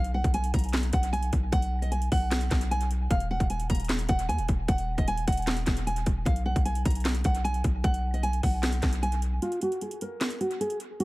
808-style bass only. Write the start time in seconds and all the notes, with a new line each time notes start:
Already playing: B1
0.24 B1
0.54 B1
0.93 B1
1.33 B1
1.52 B1
2.12 B1
2.51 B1
3.11 D#1
3.40 D#1
3.70 D#1
4.09 D#1
4.29 D#2
4.39 D#1
4.49 D#1
4.68 D#1
4.98 D#1
5.28 D#1
5.67 D#1
6.07 D#1
6.26 B1
6.56 B1
6.85 B1
7.25 B1
7.64 B1
7.84 B1
8.43 B1
8.83 B1